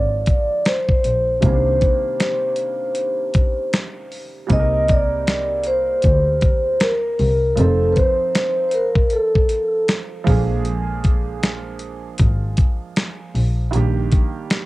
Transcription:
Already playing: G#1 D3 F3 G#3 A#3 F4 D5
0.26 kick, closed hi-hat
0.65 C5, finger snap, snare, closed hi-hat
0.89 kick
1.04 A#1, closed hi-hat
1.40 C2 C3 D#3 G3 C5, kick, closed hi-hat
1.45 A#3 C#4
1.53 D4
1.81 kick, closed hi-hat
2.20 finger snap, snare, closed hi-hat
2.56 closed hi-hat
2.95 closed hi-hat
3.34 kick, closed hi-hat
3.73 finger snap, snare, closed hi-hat
4.12 open hi-hat
4.47 C2 G3 A#3 C4, kick, closed hi-hat
4.51 D#4 G#4 D#5
4.59 A#4
4.88 D5, kick, closed hi-hat
5.27 finger snap, snare, closed hi-hat
5.63 C5, closed hi-hat
6.02 D2, kick, closed hi-hat
6.41 kick, closed hi-hat
6.80 A#4, finger snap, snare, closed hi-hat
7.19 C2, open hi-hat
7.56 F1 F3 C4 A4, closed hi-hat
7.60 D#4 C5
7.92 B4, closed hi-hat
7.97 C5, kick
8.35 finger snap, snare, closed hi-hat
8.69 C5, closed hi-hat
8.74 A#4
8.95 kick
9.10 A4, closed hi-hat
9.35 kick
9.49 closed hi-hat
9.88 finger snap, snare, closed hi-hat
10.24 A#1 F3 G#3 A#3, kick, open hi-hat
10.29 D4 G#4
10.65 closed hi-hat
11.04 kick, closed hi-hat
11.43 finger snap, snare, closed hi-hat
11.79 closed hi-hat
12.18 G#1, kick, closed hi-hat
12.57 kick, closed hi-hat
12.96 finger snap, snare, closed hi-hat
13.35 A#1, open hi-hat
13.71 A#1 D#3 G3 A#3, closed hi-hat
13.75 D4 G4
14.12 kick, closed hi-hat
14.50 finger snap, snare, closed hi-hat

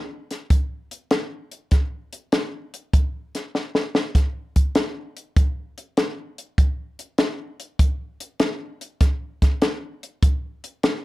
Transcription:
0.31 snare, closed hi-hat
0.50 kick, closed hi-hat
0.91 closed hi-hat
1.11 snare, closed hi-hat
1.51 closed hi-hat
1.71 kick, snare, closed hi-hat
2.13 closed hi-hat
2.32 snare, closed hi-hat
2.74 closed hi-hat
2.93 kick, closed hi-hat
3.35 snare, closed hi-hat
3.55 snare
3.75 snare
3.95 snare
4.15 kick, snare, closed hi-hat
4.56 kick, closed hi-hat
4.75 snare, closed hi-hat
5.17 closed hi-hat
5.36 kick, closed hi-hat
5.78 closed hi-hat
5.97 snare, closed hi-hat
6.38 closed hi-hat
6.58 kick, closed hi-hat
6.99 closed hi-hat
7.18 snare, closed hi-hat
7.60 closed hi-hat
7.79 kick, closed hi-hat
8.20 closed hi-hat
8.40 snare, closed hi-hat
8.81 closed hi-hat
9.01 kick, snare, closed hi-hat
9.42 kick, snare, closed hi-hat
9.62 snare, closed hi-hat
10.03 closed hi-hat
10.23 kick, closed hi-hat
10.64 closed hi-hat
10.83 snare, closed hi-hat

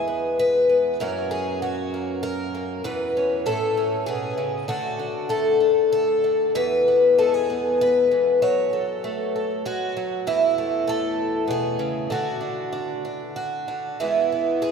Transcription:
Already playing: E2 G#3 G#4
0.08 B3
0.39 B4
0.69 B3
1.00 F#2 F#3 A#3 C#4 A#4
1.31 G#4
1.62 F#3 F#4
1.94 A#3
2.23 A#4
2.55 A#3
2.84 E2 B4
3.17 C#4
3.46 A2 A4
3.77 C#4
4.06 B2 G#4
4.38 C#3
4.68 D3 A3 D4 F#4
5.00 D4
5.29 A3 A4
5.60 D4
5.92 A4
6.24 D4
6.55 E2 B4
6.88 B3
7.18 G#3 A4
7.34 G#4
7.50 B3
7.81 B4
8.11 E2
8.42 F#3 C#5
8.73 A4
9.04 A3
9.36 A4
9.65 G#3 F#4
9.97 F#3
10.27 E2 E4
10.58 A3
10.87 A3 A4
11.47 B2 G#4
11.79 C#3
12.10 D3 F#4
12.41 D4
12.72 D4
13.05 D4
13.36 F#4
13.68 D3
14.00 E2 G#3 B3 E4
14.32 B3
14.62 G#3 G#4

